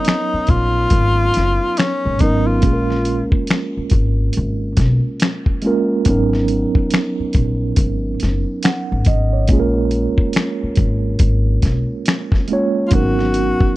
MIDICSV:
0, 0, Header, 1, 6, 480
1, 0, Start_track
1, 0, Tempo, 857143
1, 1472, Time_signature, 4, 2, 24, 8
1, 7710, End_track
2, 0, Start_track
2, 0, Title_t, "Tenor saxophone"
2, 0, Program_c, 0, 66
2, 0, Note_on_c, 0, 63, 80
2, 281, Note_on_c, 0, 65, 99
2, 289, Note_off_c, 0, 63, 0
2, 999, Note_on_c, 0, 61, 78
2, 1008, Note_off_c, 0, 65, 0
2, 1238, Note_on_c, 0, 63, 79
2, 1246, Note_off_c, 0, 61, 0
2, 1384, Note_on_c, 0, 65, 76
2, 1392, Note_off_c, 0, 63, 0
2, 1860, Note_off_c, 0, 65, 0
2, 7209, Note_on_c, 0, 65, 50
2, 7242, Note_on_c, 0, 66, 86
2, 7251, Note_off_c, 0, 65, 0
2, 7710, Note_off_c, 0, 66, 0
2, 7710, End_track
3, 0, Start_track
3, 0, Title_t, "Tine electric piano"
3, 0, Program_c, 1, 4
3, 0, Control_c, 1, 64, 127
3, 0, Note_on_c, 1, 54, 58
3, 0, Note_on_c, 1, 59, 56
3, 0, Note_on_c, 1, 61, 54
3, 0, Note_on_c, 1, 63, 57
3, 0, Note_on_c, 1, 70, 60
3, 0, Note_on_c, 1, 73, 53
3, 439, Note_off_c, 1, 54, 0
3, 443, Note_off_c, 1, 59, 0
3, 446, Note_off_c, 1, 61, 0
3, 450, Note_off_c, 1, 63, 0
3, 453, Note_off_c, 1, 70, 0
3, 1224, Note_on_c, 1, 54, 57
3, 1232, Note_on_c, 1, 59, 60
3, 1238, Note_on_c, 1, 61, 58
3, 1245, Note_on_c, 1, 63, 58
3, 1252, Note_on_c, 1, 70, 68
3, 1450, Note_off_c, 1, 54, 0
3, 1454, Note_off_c, 1, 59, 0
3, 1457, Note_off_c, 1, 61, 0
3, 1461, Note_off_c, 1, 63, 0
3, 1464, Note_off_c, 1, 70, 0
3, 1465, Note_on_c, 1, 56, 56
3, 1471, Note_on_c, 1, 58, 52
3, 1479, Note_on_c, 1, 61, 51
3, 1480, Control_c, 1, 64, 0
3, 1481, Note_off_c, 1, 73, 0
3, 1485, Note_on_c, 1, 65, 51
3, 1492, Note_on_c, 1, 68, 52
3, 1525, Note_off_c, 1, 68, 0
3, 1530, Note_on_c, 1, 70, 63
3, 1570, Control_c, 1, 64, 127
3, 2358, Note_off_c, 1, 56, 0
3, 2361, Note_off_c, 1, 58, 0
3, 2365, Note_off_c, 1, 61, 0
3, 2368, Note_off_c, 1, 65, 0
3, 2391, Note_off_c, 1, 70, 0
3, 3148, Note_on_c, 1, 56, 81
3, 3155, Note_on_c, 1, 58, 69
3, 3162, Note_on_c, 1, 61, 76
3, 3169, Note_on_c, 1, 65, 76
3, 3176, Note_on_c, 1, 70, 87
3, 3372, Note_off_c, 1, 56, 0
3, 3376, Note_off_c, 1, 58, 0
3, 3379, Note_off_c, 1, 61, 0
3, 3383, Note_off_c, 1, 65, 0
3, 3386, Note_off_c, 1, 70, 0
3, 3391, Note_on_c, 1, 54, 68
3, 3399, Note_on_c, 1, 59, 60
3, 3400, Control_c, 1, 64, 0
3, 3403, Note_on_c, 1, 61, 69
3, 3411, Note_on_c, 1, 63, 68
3, 3418, Note_on_c, 1, 70, 79
3, 3487, Control_c, 1, 64, 127
3, 4281, Note_off_c, 1, 54, 0
3, 4285, Note_off_c, 1, 59, 0
3, 4287, Note_off_c, 1, 61, 0
3, 4291, Note_off_c, 1, 63, 0
3, 4295, Note_off_c, 1, 70, 0
3, 4841, Note_on_c, 1, 78, 57
3, 5064, Note_off_c, 1, 78, 0
3, 5082, Note_on_c, 1, 75, 68
3, 5214, Note_off_c, 1, 75, 0
3, 5225, Note_on_c, 1, 73, 52
3, 5310, Note_on_c, 1, 56, 68
3, 5316, Note_on_c, 1, 58, 66
3, 5318, Control_c, 1, 64, 0
3, 5324, Note_on_c, 1, 61, 70
3, 5330, Note_on_c, 1, 65, 69
3, 5337, Note_on_c, 1, 68, 67
3, 5368, Note_off_c, 1, 68, 0
3, 5374, Note_on_c, 1, 70, 83
3, 5401, Control_c, 1, 64, 127
3, 5449, Note_off_c, 1, 73, 0
3, 6201, Note_off_c, 1, 56, 0
3, 6204, Note_off_c, 1, 58, 0
3, 6207, Note_off_c, 1, 61, 0
3, 6211, Note_off_c, 1, 65, 0
3, 6232, Note_off_c, 1, 70, 0
3, 6989, Note_on_c, 1, 56, 74
3, 6996, Note_on_c, 1, 58, 64
3, 7003, Note_on_c, 1, 61, 65
3, 7010, Note_on_c, 1, 65, 69
3, 7018, Note_on_c, 1, 73, 91
3, 7213, Note_off_c, 1, 56, 0
3, 7216, Note_off_c, 1, 58, 0
3, 7220, Note_off_c, 1, 61, 0
3, 7223, Note_off_c, 1, 65, 0
3, 7226, Note_on_c, 1, 54, 61
3, 7227, Note_off_c, 1, 73, 0
3, 7233, Note_on_c, 1, 58, 44
3, 7239, Control_c, 1, 64, 0
3, 7240, Note_on_c, 1, 61, 56
3, 7246, Note_on_c, 1, 63, 57
3, 7254, Note_on_c, 1, 70, 66
3, 7269, Note_on_c, 1, 59, 55
3, 7276, Note_off_c, 1, 58, 0
3, 7325, Control_c, 1, 64, 127
3, 7710, Note_off_c, 1, 54, 0
3, 7710, Note_off_c, 1, 59, 0
3, 7710, Note_off_c, 1, 61, 0
3, 7710, Note_off_c, 1, 63, 0
3, 7710, Note_off_c, 1, 70, 0
3, 7710, End_track
4, 0, Start_track
4, 0, Title_t, "Upright bass"
4, 0, Program_c, 2, 32
4, 279, Note_on_c, 2, 34, 78
4, 474, Note_off_c, 2, 34, 0
4, 516, Note_on_c, 2, 32, 85
4, 712, Note_off_c, 2, 32, 0
4, 767, Note_on_c, 2, 30, 69
4, 880, Note_off_c, 2, 30, 0
4, 1150, Note_on_c, 2, 32, 68
4, 1223, Note_off_c, 2, 32, 0
4, 1242, Note_on_c, 2, 32, 72
4, 1479, Note_off_c, 2, 32, 0
4, 1479, Note_on_c, 2, 34, 81
4, 1793, Note_off_c, 2, 34, 0
4, 2199, Note_on_c, 2, 32, 73
4, 2394, Note_off_c, 2, 32, 0
4, 2448, Note_on_c, 2, 32, 75
4, 2639, Note_off_c, 2, 32, 0
4, 2679, Note_on_c, 2, 35, 73
4, 2795, Note_off_c, 2, 35, 0
4, 3402, Note_on_c, 2, 32, 83
4, 3715, Note_off_c, 2, 32, 0
4, 4121, Note_on_c, 2, 34, 73
4, 4315, Note_off_c, 2, 34, 0
4, 4358, Note_on_c, 2, 32, 73
4, 4554, Note_off_c, 2, 32, 0
4, 4608, Note_on_c, 2, 30, 73
4, 4721, Note_off_c, 2, 30, 0
4, 4995, Note_on_c, 2, 32, 64
4, 5066, Note_off_c, 2, 32, 0
4, 5083, Note_on_c, 2, 32, 77
4, 5319, Note_off_c, 2, 32, 0
4, 5319, Note_on_c, 2, 34, 92
4, 5633, Note_off_c, 2, 34, 0
4, 6039, Note_on_c, 2, 32, 70
4, 6234, Note_off_c, 2, 32, 0
4, 6277, Note_on_c, 2, 32, 83
4, 6473, Note_off_c, 2, 32, 0
4, 6520, Note_on_c, 2, 35, 67
4, 6636, Note_off_c, 2, 35, 0
4, 7239, Note_on_c, 2, 32, 91
4, 7553, Note_off_c, 2, 32, 0
4, 7710, End_track
5, 0, Start_track
5, 0, Title_t, "Muted upright bass strokes"
5, 189, Note_on_c, 9, 29, 42
5, 245, Note_off_c, 9, 29, 0
5, 1866, Note_on_c, 9, 29, 38
5, 1922, Note_off_c, 9, 29, 0
5, 2113, Note_on_c, 9, 29, 41
5, 2169, Note_off_c, 9, 29, 0
5, 3787, Note_on_c, 9, 29, 39
5, 3843, Note_off_c, 9, 29, 0
5, 4032, Note_on_c, 9, 29, 40
5, 4088, Note_off_c, 9, 29, 0
5, 5705, Note_on_c, 9, 29, 36
5, 5761, Note_off_c, 9, 29, 0
5, 5954, Note_on_c, 9, 29, 39
5, 6010, Note_off_c, 9, 29, 0
5, 7625, Note_on_c, 9, 29, 41
5, 7681, Note_off_c, 9, 29, 0
5, 7710, End_track
6, 0, Start_track
6, 0, Title_t, "Drums"
6, 26, Note_on_c, 9, 42, 65
6, 44, Note_on_c, 9, 38, 92
6, 48, Note_on_c, 9, 26, 70
6, 82, Note_off_c, 9, 42, 0
6, 100, Note_off_c, 9, 38, 0
6, 104, Note_off_c, 9, 26, 0
6, 263, Note_on_c, 9, 42, 49
6, 272, Note_on_c, 9, 36, 81
6, 319, Note_off_c, 9, 42, 0
6, 328, Note_off_c, 9, 36, 0
6, 505, Note_on_c, 9, 42, 67
6, 509, Note_on_c, 9, 36, 75
6, 561, Note_off_c, 9, 42, 0
6, 565, Note_off_c, 9, 36, 0
6, 749, Note_on_c, 9, 42, 60
6, 766, Note_on_c, 9, 38, 30
6, 805, Note_off_c, 9, 42, 0
6, 822, Note_off_c, 9, 38, 0
6, 991, Note_on_c, 9, 42, 60
6, 1005, Note_on_c, 9, 38, 76
6, 1010, Note_on_c, 9, 26, 67
6, 1047, Note_off_c, 9, 42, 0
6, 1061, Note_off_c, 9, 38, 0
6, 1066, Note_off_c, 9, 26, 0
6, 1227, Note_on_c, 9, 42, 48
6, 1235, Note_on_c, 9, 36, 83
6, 1283, Note_off_c, 9, 42, 0
6, 1291, Note_off_c, 9, 36, 0
6, 1467, Note_on_c, 9, 42, 65
6, 1472, Note_on_c, 9, 36, 100
6, 1523, Note_off_c, 9, 42, 0
6, 1528, Note_off_c, 9, 36, 0
6, 1626, Note_on_c, 9, 38, 25
6, 1682, Note_off_c, 9, 38, 0
6, 1708, Note_on_c, 9, 42, 53
6, 1764, Note_off_c, 9, 42, 0
6, 1859, Note_on_c, 9, 36, 78
6, 1915, Note_off_c, 9, 36, 0
6, 1945, Note_on_c, 9, 42, 63
6, 1963, Note_on_c, 9, 38, 86
6, 1967, Note_on_c, 9, 26, 69
6, 2001, Note_off_c, 9, 42, 0
6, 2019, Note_off_c, 9, 38, 0
6, 2023, Note_off_c, 9, 26, 0
6, 2182, Note_on_c, 9, 42, 51
6, 2192, Note_on_c, 9, 36, 83
6, 2238, Note_off_c, 9, 42, 0
6, 2248, Note_off_c, 9, 36, 0
6, 2424, Note_on_c, 9, 42, 70
6, 2480, Note_off_c, 9, 42, 0
6, 2670, Note_on_c, 9, 42, 58
6, 2673, Note_on_c, 9, 36, 87
6, 2686, Note_on_c, 9, 38, 28
6, 2726, Note_off_c, 9, 42, 0
6, 2729, Note_off_c, 9, 36, 0
6, 2742, Note_off_c, 9, 38, 0
6, 2910, Note_on_c, 9, 42, 63
6, 2924, Note_on_c, 9, 38, 93
6, 2929, Note_on_c, 9, 26, 72
6, 2966, Note_off_c, 9, 42, 0
6, 2980, Note_off_c, 9, 38, 0
6, 2985, Note_off_c, 9, 26, 0
6, 3058, Note_on_c, 9, 36, 81
6, 3114, Note_off_c, 9, 36, 0
6, 3145, Note_on_c, 9, 42, 47
6, 3201, Note_off_c, 9, 42, 0
6, 3388, Note_on_c, 9, 42, 68
6, 3394, Note_on_c, 9, 36, 91
6, 3444, Note_off_c, 9, 42, 0
6, 3450, Note_off_c, 9, 36, 0
6, 3547, Note_on_c, 9, 38, 28
6, 3603, Note_off_c, 9, 38, 0
6, 3630, Note_on_c, 9, 42, 55
6, 3686, Note_off_c, 9, 42, 0
6, 3780, Note_on_c, 9, 36, 78
6, 3836, Note_off_c, 9, 36, 0
6, 3867, Note_on_c, 9, 42, 68
6, 3885, Note_on_c, 9, 38, 85
6, 3889, Note_on_c, 9, 26, 72
6, 3923, Note_off_c, 9, 42, 0
6, 3941, Note_off_c, 9, 38, 0
6, 3945, Note_off_c, 9, 26, 0
6, 4105, Note_on_c, 9, 42, 54
6, 4114, Note_on_c, 9, 36, 83
6, 4161, Note_off_c, 9, 42, 0
6, 4170, Note_off_c, 9, 36, 0
6, 4348, Note_on_c, 9, 42, 74
6, 4351, Note_on_c, 9, 36, 78
6, 4404, Note_off_c, 9, 42, 0
6, 4407, Note_off_c, 9, 36, 0
6, 4591, Note_on_c, 9, 42, 56
6, 4608, Note_on_c, 9, 38, 31
6, 4647, Note_off_c, 9, 42, 0
6, 4664, Note_off_c, 9, 38, 0
6, 4831, Note_on_c, 9, 42, 68
6, 4845, Note_on_c, 9, 38, 93
6, 4849, Note_on_c, 9, 26, 70
6, 4887, Note_off_c, 9, 42, 0
6, 4901, Note_off_c, 9, 38, 0
6, 4905, Note_off_c, 9, 26, 0
6, 5066, Note_on_c, 9, 42, 55
6, 5076, Note_on_c, 9, 36, 82
6, 5122, Note_off_c, 9, 42, 0
6, 5132, Note_off_c, 9, 36, 0
6, 5306, Note_on_c, 9, 42, 66
6, 5313, Note_on_c, 9, 36, 100
6, 5362, Note_off_c, 9, 42, 0
6, 5369, Note_off_c, 9, 36, 0
6, 5549, Note_on_c, 9, 42, 53
6, 5605, Note_off_c, 9, 42, 0
6, 5699, Note_on_c, 9, 36, 73
6, 5755, Note_off_c, 9, 36, 0
6, 5785, Note_on_c, 9, 42, 67
6, 5803, Note_on_c, 9, 38, 83
6, 5808, Note_on_c, 9, 26, 70
6, 5841, Note_off_c, 9, 42, 0
6, 5859, Note_off_c, 9, 38, 0
6, 5864, Note_off_c, 9, 26, 0
6, 6023, Note_on_c, 9, 42, 53
6, 6033, Note_on_c, 9, 36, 88
6, 6079, Note_off_c, 9, 42, 0
6, 6089, Note_off_c, 9, 36, 0
6, 6266, Note_on_c, 9, 42, 70
6, 6270, Note_on_c, 9, 36, 82
6, 6322, Note_off_c, 9, 42, 0
6, 6326, Note_off_c, 9, 36, 0
6, 6509, Note_on_c, 9, 42, 56
6, 6513, Note_on_c, 9, 36, 84
6, 6526, Note_on_c, 9, 38, 30
6, 6565, Note_off_c, 9, 42, 0
6, 6569, Note_off_c, 9, 36, 0
6, 6582, Note_off_c, 9, 38, 0
6, 6751, Note_on_c, 9, 42, 63
6, 6765, Note_on_c, 9, 38, 90
6, 6770, Note_on_c, 9, 26, 71
6, 6807, Note_off_c, 9, 42, 0
6, 6821, Note_off_c, 9, 38, 0
6, 6826, Note_off_c, 9, 26, 0
6, 6898, Note_on_c, 9, 36, 89
6, 6910, Note_on_c, 9, 38, 28
6, 6954, Note_off_c, 9, 36, 0
6, 6966, Note_off_c, 9, 38, 0
6, 6987, Note_on_c, 9, 42, 52
6, 7043, Note_off_c, 9, 42, 0
6, 7228, Note_on_c, 9, 42, 64
6, 7233, Note_on_c, 9, 36, 95
6, 7284, Note_off_c, 9, 42, 0
6, 7289, Note_off_c, 9, 36, 0
6, 7386, Note_on_c, 9, 38, 29
6, 7442, Note_off_c, 9, 38, 0
6, 7470, Note_on_c, 9, 42, 57
6, 7526, Note_off_c, 9, 42, 0
6, 7619, Note_on_c, 9, 36, 86
6, 7675, Note_off_c, 9, 36, 0
6, 7710, End_track
0, 0, End_of_file